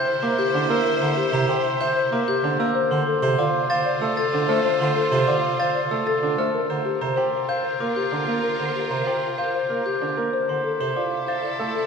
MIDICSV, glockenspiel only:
0, 0, Header, 1, 2, 480
1, 0, Start_track
1, 0, Tempo, 315789
1, 1303, Time_signature, 6, 2, 24, 8
1, 18036, End_track
2, 0, Start_track
2, 0, Title_t, "Glockenspiel"
2, 0, Program_c, 0, 9
2, 0, Note_on_c, 0, 91, 106
2, 176, Note_off_c, 0, 91, 0
2, 347, Note_on_c, 0, 86, 91
2, 584, Note_on_c, 0, 91, 96
2, 656, Note_off_c, 0, 86, 0
2, 895, Note_off_c, 0, 91, 0
2, 1069, Note_on_c, 0, 88, 85
2, 1377, Note_off_c, 0, 88, 0
2, 1546, Note_on_c, 0, 82, 92
2, 1855, Note_off_c, 0, 82, 0
2, 2025, Note_on_c, 0, 82, 122
2, 2266, Note_on_c, 0, 84, 91
2, 2335, Note_off_c, 0, 82, 0
2, 2575, Note_off_c, 0, 84, 0
2, 2744, Note_on_c, 0, 91, 107
2, 3055, Note_off_c, 0, 91, 0
2, 3228, Note_on_c, 0, 86, 89
2, 3464, Note_on_c, 0, 91, 100
2, 3536, Note_off_c, 0, 86, 0
2, 3775, Note_off_c, 0, 91, 0
2, 3950, Note_on_c, 0, 88, 92
2, 4257, Note_off_c, 0, 88, 0
2, 4425, Note_on_c, 0, 84, 92
2, 4735, Note_off_c, 0, 84, 0
2, 4901, Note_on_c, 0, 84, 118
2, 5146, Note_on_c, 0, 86, 91
2, 5214, Note_off_c, 0, 84, 0
2, 5455, Note_off_c, 0, 86, 0
2, 5622, Note_on_c, 0, 93, 116
2, 5934, Note_off_c, 0, 93, 0
2, 6105, Note_on_c, 0, 88, 96
2, 6341, Note_on_c, 0, 93, 97
2, 6415, Note_off_c, 0, 88, 0
2, 6654, Note_off_c, 0, 93, 0
2, 6825, Note_on_c, 0, 89, 87
2, 7135, Note_off_c, 0, 89, 0
2, 7304, Note_on_c, 0, 84, 95
2, 7615, Note_off_c, 0, 84, 0
2, 7783, Note_on_c, 0, 84, 108
2, 8024, Note_on_c, 0, 86, 86
2, 8094, Note_off_c, 0, 84, 0
2, 8335, Note_off_c, 0, 86, 0
2, 8506, Note_on_c, 0, 93, 100
2, 8815, Note_off_c, 0, 93, 0
2, 8985, Note_on_c, 0, 88, 77
2, 9224, Note_on_c, 0, 93, 100
2, 9295, Note_off_c, 0, 88, 0
2, 9535, Note_off_c, 0, 93, 0
2, 9707, Note_on_c, 0, 89, 79
2, 10016, Note_off_c, 0, 89, 0
2, 10183, Note_on_c, 0, 82, 77
2, 10494, Note_off_c, 0, 82, 0
2, 10661, Note_on_c, 0, 82, 104
2, 10902, Note_on_c, 0, 84, 70
2, 10974, Note_off_c, 0, 82, 0
2, 11214, Note_off_c, 0, 84, 0
2, 11385, Note_on_c, 0, 91, 90
2, 11695, Note_off_c, 0, 91, 0
2, 11861, Note_on_c, 0, 86, 81
2, 12101, Note_on_c, 0, 91, 88
2, 12174, Note_off_c, 0, 86, 0
2, 12414, Note_off_c, 0, 91, 0
2, 13065, Note_on_c, 0, 82, 68
2, 13375, Note_off_c, 0, 82, 0
2, 13540, Note_on_c, 0, 82, 90
2, 13782, Note_on_c, 0, 84, 74
2, 13853, Note_off_c, 0, 82, 0
2, 14094, Note_off_c, 0, 84, 0
2, 14261, Note_on_c, 0, 91, 77
2, 14574, Note_off_c, 0, 91, 0
2, 14748, Note_on_c, 0, 86, 67
2, 14983, Note_on_c, 0, 91, 79
2, 15056, Note_off_c, 0, 86, 0
2, 15295, Note_off_c, 0, 91, 0
2, 15948, Note_on_c, 0, 84, 72
2, 16256, Note_off_c, 0, 84, 0
2, 16425, Note_on_c, 0, 84, 94
2, 16667, Note_on_c, 0, 86, 68
2, 16735, Note_off_c, 0, 84, 0
2, 16976, Note_off_c, 0, 86, 0
2, 17149, Note_on_c, 0, 93, 89
2, 17457, Note_off_c, 0, 93, 0
2, 17625, Note_on_c, 0, 88, 64
2, 17935, Note_off_c, 0, 88, 0
2, 18036, End_track
0, 0, End_of_file